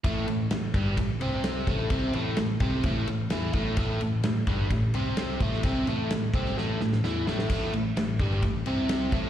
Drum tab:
CC |----------------|----------------|----------------|----------------|
RD |x-x-x-x-x-x-x-x-|x-x-x-x-x-x-x-x-|x-x-x-x-x-x-x-x-|x-x-x-x---------|
SD |----o-------o---|----o-------o---|----o-------o--o|----o--oo-ooo-oo|
BD |o-----o-o-----o-|o-----o-o-----o-|o-----o-o-----o-|o-----o---------|

CC |x---------------|
RD |x-x-x-x-x-x-x-x-|
SD |----o--o----o---|
BD |o-----o-o-----o-|